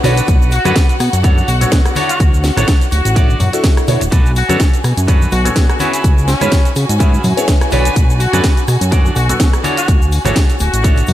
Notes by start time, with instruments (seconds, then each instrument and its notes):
Already playing: string section F#4 F#5
0.03 analog synth bass B1, grand piano B3 D4 F#4 A4 C#5, clean electric guitar D4 F#4 A4 B4, open hi-hat, high conga, shaker
0.16 closed hi-hat, cabasa, shaker
0.28 analog synth bass B1, kick, closed hi-hat, cabasa, shaker
0.42 cabasa, shaker
0.51 horn section F#4, open hi-hat, shaker
0.64 analog synth bass F#2, grand piano B3 D4 F#4 A4 C#5, clean electric guitar D4 F#4 A4 B4, cross-stick, closed hi-hat, high conga, cabasa, shaker
0.76 kick, snare, closed hi-hat, cabasa, shaker
0.89 closed hi-hat, cabasa
1.00 analog synth bass B2, cross-stick, open hi-hat, shaker
1.13 analog synth bass F#2, closed hi-hat, cabasa, shaker
1.23 grand piano B3 D4 F#4 A4 C#5, clean electric guitar D4 F#4 A4 C#5, kick, closed hi-hat, cabasa, shaker
1.37 high conga, cabasa, shaker
1.48 analog synth bass B1, horn section F#4, open hi-hat, shaker
1.61 grand piano B3 D4 F#4 A4 C#5, closed hi-hat, low conga, cabasa, shaker
1.71 analog synth bass B2, muted clean electric guitar stroke, kick, snare, closed hi-hat, cabasa, shaker
1.85 cross-stick, closed hi-hat, cabasa
1.95 clean electric guitar D4 F#4 A4 C#5, grand piano D4 E4 F#4 A4 C#5, open hi-hat, high conga, shaker
2.09 horn section F#4, closed hi-hat, cabasa, shaker
2.20 analog synth bass D2, kick, closed hi-hat, cabasa, shaker
2.33 cabasa, shaker
2.44 snare, open hi-hat, shaker
2.56 analog synth bass A1, clean electric guitar D4 F#4 A4 C#5, grand piano D4 E4 F#4 A4 C#5, cross-stick, closed hi-hat, high conga, cabasa, shaker
2.68 kick, snare, closed hi-hat, cabasa, shaker
2.81 closed hi-hat, cabasa, shaker
2.92 analog synth bass D1, horn section F#4, open hi-hat, shaker
3.05 analog synth bass A1, closed hi-hat, cabasa, shaker
3.15 clean electric guitar D4 F#4 A4 D5, grand piano D4 E4 F#4 A4 C#5, kick, closed hi-hat, cabasa, shaker
3.29 high conga, cabasa, shaker
3.40 analog synth bass F#2, open hi-hat, low conga, shaker
3.53 grand piano D4 E4 F#4 A4 C#6, closed hi-hat, cabasa, shaker
3.64 muted clean electric guitar stroke, kick, snare, closed hi-hat, cabasa, shaker
3.77 cross-stick, closed hi-hat, cabasa
3.88 analog synth bass B2, grand piano D4 E4 F#4 A4 C#5, open hi-hat, high conga, shaker
4.00 analog synth bass D1, muted clean electric guitar stroke, closed hi-hat, cabasa, shaker
4.11 analog synth bass B1, clean electric guitar D4 F#4 A4 B4, string section F#4 G#5, kick, closed hi-hat, cabasa, shaker
4.26 cabasa, shaker
4.36 horn section F#4, open hi-hat, shaker
4.49 analog synth bass F#2, grand piano B3 D4 F#4 A4 C#5, clean electric guitar D4 F#4 A4 C#5, cross-stick, closed hi-hat, high conga, cabasa, shaker
4.60 kick, snare, closed hi-hat, cabasa, shaker
4.74 closed hi-hat, cabasa
4.84 analog synth bass B2, cross-stick, open hi-hat, shaker
4.97 analog synth bass F#2, closed hi-hat, cabasa, shaker
5.08 grand piano B3 D4 F#4 A4 C#5, clean electric guitar D4 F#4 A4 B4, kick, closed hi-hat, cabasa, shaker
5.21 high conga, cabasa, shaker
5.32 analog synth bass B1, horn section F#4, open hi-hat, shaker
5.45 grand piano B3 D4 F#4 A4 C#5, closed hi-hat, low conga, cabasa, shaker
5.56 analog synth bass B2, muted clean electric guitar stroke, kick, snare, closed hi-hat, cabasa, shaker
5.69 horn section F#4, cross-stick, closed hi-hat, cabasa
5.80 grand piano B3 C#4 E4 G#4 C#5, clean electric guitar C#4 E4 G#4 B4, horn section F#4, open hi-hat, high conga, shaker
5.93 closed hi-hat, cabasa, shaker
6.04 analog synth bass C#2, kick, closed hi-hat, cabasa, shaker
6.18 cabasa, shaker
6.28 horn section C#4, snare, open hi-hat, shaker
6.41 analog synth bass G#2, grand piano B3 C#4 E4 G#4 C#5, clean electric guitar C#4 E4 G#4 B4, cross-stick, closed hi-hat, high conga, cabasa, shaker
6.52 kick, snare, closed hi-hat, cabasa, shaker
6.65 closed hi-hat, cabasa, shaker
6.76 analog synth bass C#3, open hi-hat, shaker
6.89 analog synth bass G#2, closed hi-hat, cabasa, shaker
6.99 grand piano B3 C#4 E4 G#4 C#5, clean electric guitar C#4 E4 G#4 B4, kick, closed hi-hat, cabasa, shaker
7.13 high conga, cabasa, shaker
7.24 analog synth bass F#2, open hi-hat, low conga, shaker
7.37 grand piano B3 C#4 E4 G#4 C#5, closed hi-hat, cabasa, shaker
7.48 muted clean electric guitar stroke, kick, snare, closed hi-hat, cabasa, shaker
7.61 cross-stick, closed hi-hat, cabasa
7.71 analog synth bass B1, grand piano B3 D4 F#4 A4 C#5, clean electric guitar D4 F#4 A4 B4, open hi-hat, high conga, shaker
7.85 closed hi-hat, cabasa, shaker
7.96 analog synth bass B1, kick, closed hi-hat, cabasa, shaker
8.09 cabasa, shaker
8.20 horn section F#4, open hi-hat, shaker
8.32 analog synth bass F#2, grand piano B3 D4 F#4 A4 C#5, clean electric guitar D4 F#4 A4 B4, cross-stick, closed hi-hat, high conga, cabasa, shaker
8.44 kick, snare, closed hi-hat, cabasa, shaker
8.57 closed hi-hat, cabasa
8.68 analog synth bass B2, cross-stick, open hi-hat, shaker
8.81 analog synth bass F#2, closed hi-hat, cabasa, shaker
8.91 grand piano B3 D4 F#4 A4 C#5, clean electric guitar D4 F#4 A4 D5, kick, closed hi-hat, cabasa, shaker
9.05 high conga, cabasa, shaker
9.16 analog synth bass B1, horn section F#4, open hi-hat, shaker
9.29 grand piano B3 D4 F#4 A4 C#6, closed hi-hat, low conga, cabasa, shaker
9.40 analog synth bass B2, muted clean electric guitar stroke, kick, snare, closed hi-hat, cabasa, shaker
9.53 cross-stick, closed hi-hat, cabasa
9.63 clean electric guitar D4 F#4 A4 C#5, grand piano D4 E4 F#4 A4 C#5, open hi-hat, high conga, shaker
9.77 horn section F#4, closed hi-hat, cabasa, shaker
9.88 analog synth bass D2, kick, closed hi-hat, cabasa, shaker
10.02 cabasa, shaker
10.12 open hi-hat, shaker
10.25 analog synth bass A1, clean electric guitar D4 F#4 A4 C#5, grand piano D4 E4 F#4 A4 C#5, cross-stick, closed hi-hat, high conga, low conga, cabasa, shaker
10.36 kick, snare, closed hi-hat, cabasa, shaker
10.50 closed hi-hat, cabasa, shaker
10.60 analog synth bass D1, horn section F#4, open hi-hat, shaker
10.73 analog synth bass A1, closed hi-hat, cabasa, shaker
10.83 clean electric guitar D4 F#4 A4 C#5, grand piano D4 E4 F#4 A4 C#5, kick, closed hi-hat, cabasa, shaker
10.96 closed hi-hat, high conga, cabasa, shaker
11.07 analog synth bass F#2, open hi-hat, low conga, shaker